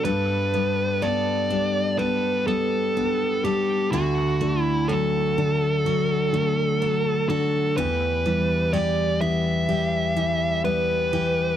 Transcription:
Already playing: B3 D4
0.05 G2 G3 A4 B4
0.54 G3 B3
1.02 B3 A4 D5
1.50 G3 D4
1.99 B3 A4 B4
2.47 G3 B3 A4
2.97 B3 D4
3.44 G3 G4 A4
3.92 D2 D3 F#4
4.41 D3 A3
4.63 E4
4.88 F#3 F#4 A4
5.38 D3 D4
5.85 F#3 F#4
6.33 D3 A3
6.82 F#3 D4
7.29 D3 F#4 A4
7.77 E2 G4 B4
8.26 E3 G3
8.73 G3 G4 D5
9.21 E3 B3 E5
9.69 G3 G4
10.16 E3 G3
10.65 G3 B3 B4
11.13 E3 G4

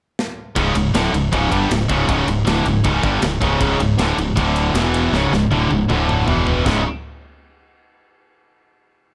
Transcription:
0.19 snare
0.56 C#1 C#2 G#2 C#3, kick, ride
0.75 C#1 C#2 G#2, ride
0.94 D1 D2 A2 D3, snare, ride
1.13 C#1 C#2 G#2, ride
1.32 C#1 C#2 G#2 C#3, kick, ride
1.52 G1 G2 D3 G3, kick, ride
1.71 C#1 C#2 G#2, snare, ride
1.89 C#1 C#2 G#2 C#3, kick, ride
2.09 C#1 C#2 G#2 C#3, kick, ride
2.27 C#1 C#2 G#2, ride
2.47 D1 D2 A2 D3, snare, ride
2.66 C#1 C#2 G#2, ride
2.84 C#1 C#2 G#2 C#3, kick, ride
3.03 G1 G2 D3 G3, kick, ride
3.22 C#1 C#2 G#2, snare, ride
3.41 C#1 C#2 G#2 C#3, kick, ride
3.60 C#1 C#2 G#2 C#3, kick, ride
3.79 C#1 C#2 G#2, ride
3.97 D1 D2 A2 D3, snare, ride
4.17 C#1 C#2 G#2, ride
4.35 D1 D2 A2 D3, kick, ride
4.56 ride
4.74 E1 E2 B2 E3, snare, ride
4.94 ride
5.12 C#1 C#2 G#2 C#3, snare
5.32 C#1 C#2 G#2, snare
5.51 D1 D2 A2 D3, high tom
5.70 C#1 C#2 G#2, high tom
5.88 D1 D2 A2 D3, mid tom
6.09 mid tom
6.27 E1 E2 B2 E3, floor tom
6.47 floor tom
6.65 C#1 C#2 G#2 C#3 G#3 E4, kick, snare, splash

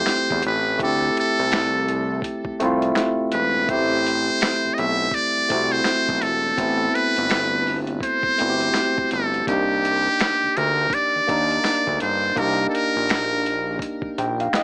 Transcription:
Already playing: A3 C4 E4 G4 C5
0.06 finger snap, snare, closed hi-hat
0.31 E2, kick
0.43 A1 B4, closed hi-hat
0.78 D2 A3 C4 E4, kick, closed hi-hat
0.83 G4 A4
1.17 A4, closed hi-hat
1.39 C2
1.52 finger snap, snare, closed hi-hat
1.88 closed hi-hat
2.22 kick, closed hi-hat
2.45 kick
2.59 C2 A3 C4 E4, closed hi-hat
2.65 F4
2.82 closed hi-hat
2.95 finger snap, snare, closed hi-hat
3.32 E1 B4, closed hi-hat
3.68 A1 A3 C4 E4 C5, kick, closed hi-hat
3.73 G4
4.07 closed hi-hat
4.41 finger snap, snare, closed hi-hat
4.65 B1
4.74 D#5, closed hi-hat
4.79 B1 E5
5.11 D5, kick, closed hi-hat
5.37 C2
5.49 C2 A3 C4 E4, kick, closed hi-hat
5.54 F#4
5.72 C5, closed hi-hat
5.84 finger snap, snare, closed hi-hat
6.09 B1, kick
6.21 E1 A4, closed hi-hat
6.57 A1 B3 C4 E4, kick, closed hi-hat
6.62 A4
6.95 B4, closed hi-hat
7.16 G1, closed hi-hat
7.30 finger snap, snare, closed hi-hat
7.67 open hi-hat
7.87 closed hi-hat
8.01 C5, kick, closed hi-hat
8.23 kick
8.38 G1 A3 C4 E4, closed hi-hat
8.43 F#4
8.50 G4
8.61 closed hi-hat
8.74 finger snap, snare, closed hi-hat
8.98 kick
9.11 G1 A4, closed hi-hat
9.34 closed hi-hat
9.47 C2 A#3 D4 D#4 G4, kick, closed hi-hat
9.52 G4
9.85 closed hi-hat
10.20 finger snap, snare, closed hi-hat
10.43 D2
10.57 D2 A#4, closed hi-hat
10.90 D5, kick, closed hi-hat
11.16 D#2
11.27 D#2 A#3 D4 D#4, kick, closed hi-hat
11.32 A#4
11.51 closed hi-hat
11.64 finger snap, snare, closed hi-hat
11.87 D2, kick
12.00 G1 C5, closed hi-hat
12.36 C2 A#3 D4 D#4 A#4, kick, closed hi-hat
12.40 G4
12.70 A4
12.75 A#4, closed hi-hat
12.96 A#1
13.09 finger snap, snare, closed hi-hat
13.46 closed hi-hat
13.79 kick, closed hi-hat
14.02 kick
14.18 A#1 G5, closed hi-hat
14.40 F5, closed hi-hat
14.53 D#5, finger snap, snare, closed hi-hat

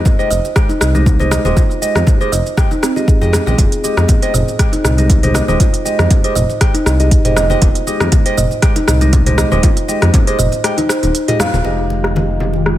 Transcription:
Already playing: G#3 G4 D#5
0.05 kick, muted conga, high conga, low conga, shaker
0.19 G#3 G4 C5 D#5, shaker
0.31 F1 D#5, shaker
0.45 muted conga, shaker
0.56 G#3 G4 G5, kick, cross-stick, shaker
0.69 D#4, muted conga, shaker
0.81 C2 D#5, cross-stick, shaker
0.95 G#3 D#4 G4 D#5, muted conga, high conga, shaker
1.06 kick, low conga, shaker
1.20 G#3 G4 C5 D#5, muted conga, high conga, shaker
1.31 D#5, cross-stick, high conga, shaker
1.45 D#1 G#3 G4 C5 D#5, high conga, shaker
1.56 F4, kick, muted conga, low conga, shaker
1.71 shaker
1.82 G#3 G4 D#5, muted conga, shaker
1.95 F2, cross-stick, high conga, shaker
2.07 kick, muted conga, high conga, low conga, shaker
2.21 G#3 G4 C5 D#5, shaker
2.32 F1 D#5, shaker
2.46 muted conga, shaker
2.57 G#3 G4 G5, kick, cross-stick, low conga, shaker
2.71 D#4, muted conga, high conga, shaker
2.83 C4, cross-stick, shaker
2.96 G#3 F4 G4 D#5, muted conga, shaker
3.08 G#4, kick, shaker
3.22 F2 G#3 G4 G#4 D#5, muted conga, shaker
3.33 G#4, cross-stick, low conga, shaker
3.47 A#1 G#3 G4 D#5, high conga, shaker
3.58 F1 F4, kick, closed hi-hat, muted conga, low conga, shaker
3.72 closed hi-hat, shaker
3.84 G#3 G4 D#5, muted conga, shaker
3.97 F2, cross-stick, high conga, shaker
4.08 kick, closed hi-hat, muted conga, high conga, low conga, shaker
4.22 G#3 G4 C5 D#5, closed hi-hat, shaker
4.34 F1 D#5, mid tom, shaker
4.48 muted conga, shaker
4.59 G#3 G4 G5, kick, cross-stick, closed hi-hat, shaker
4.73 D#4, closed hi-hat, muted conga, shaker
4.84 C2 D#5, cross-stick, mid tom, shaker
4.98 G#3 D#4 G4 D#5, closed hi-hat, muted conga, high conga, shaker
5.10 kick, closed hi-hat, low conga, shaker
5.23 G#3 G4 C5 D#5, closed hi-hat, mid tom, muted conga, high conga, shaker
5.34 D#5, cross-stick, high conga, shaker
5.48 D#1 G#3 G4 C5 D#5, high conga, shaker
5.60 F4, kick, closed hi-hat, muted conga, low conga, shaker
5.74 closed hi-hat, shaker
5.85 G#3 G4 D#5, muted conga, shaker
5.99 F2, cross-stick, high conga, shaker
6.11 kick, closed hi-hat, muted conga, high conga, low conga, shaker
6.24 G#3 G4 C5 D#5, closed hi-hat, shaker
6.35 F1 D#5, mid tom, shaker
6.50 muted conga, shaker
6.61 G#3 G4 G5, kick, cross-stick, closed hi-hat, shaker
6.74 D#4, closed hi-hat, muted conga, shaker
6.86 C2 D#5, cross-stick, shaker
7.00 G#3 D#4 G4 D#5, closed hi-hat, muted conga, shaker
7.11 kick, closed hi-hat, shaker
7.25 F1 G#3 G4 C5 D#5, closed hi-hat, mid tom, muted conga, shaker
7.36 D#5, cross-stick, low conga, shaker
7.50 G#3 G4 C5 D#5, high conga, shaker
7.62 F1 F4, kick, closed hi-hat, muted conga, low conga, shaker
7.75 closed hi-hat, shaker
7.87 G#3 G4 D#5, muted conga, shaker
8.00 F2, cross-stick, high conga, shaker
8.12 kick, closed hi-hat, muted conga, high conga, low conga, shaker
8.26 G#3 G4 C5 D#5, closed hi-hat, shaker
8.37 F1 D#5, mid tom, shaker
8.51 muted conga, shaker
8.62 G#3 G4 G5, kick, cross-stick, closed hi-hat, shaker
8.76 D#4, closed hi-hat, muted conga, shaker
8.88 C2 D#5, cross-stick, mid tom, shaker
9.01 G#3 D#4 G4 D#5, closed hi-hat, muted conga, high conga, shaker
9.13 kick, closed hi-hat, low conga, shaker
9.26 G#3 G4 C5 D#5, closed hi-hat, mid tom, muted conga, high conga, shaker
9.38 D#5, cross-stick, high conga, shaker
9.52 D#1 G#3 G4 C5 D#5, high conga, shaker
9.63 F4, kick, closed hi-hat, muted conga, low conga, shaker
9.77 closed hi-hat, shaker
9.88 G#3 G4 D#5, muted conga, shaker
10.02 F2, cross-stick, closed hi-hat, high conga, shaker
10.14 kick, closed hi-hat, muted conga, high conga, low conga, shaker
10.27 G#3 G4 C5 D#5, closed hi-hat, shaker
10.39 F1 D#5, mid tom, shaker
10.52 closed hi-hat, muted conga, shaker
10.64 G#3 G4 G5, cross-stick, closed hi-hat, shaker
10.78 D#4, closed hi-hat, muted conga, high conga, shaker
10.89 C5, cross-stick, shaker
11.03 D#1 D#4, closed hi-hat, muted conga, shaker
11.15 closed hi-hat, shaker
11.28 G#3 F4 G4 D#5, closed hi-hat, mid tom, muted conga, shaker
11.39 F5, cross-stick, low conga, shaker
11.53 D#1 F4, high conga, shaker
11.65 F1 D#3 G#3 F4 G4 D#5, crash, muted conga, shaker
11.79 shaker
11.90 muted conga, shaker
12.04 cross-stick, high conga, shaker
12.16 muted conga, high conga, shaker
12.30 shaker
12.40 low conga, shaker
12.53 muted conga, shaker
12.66 cross-stick, shaker

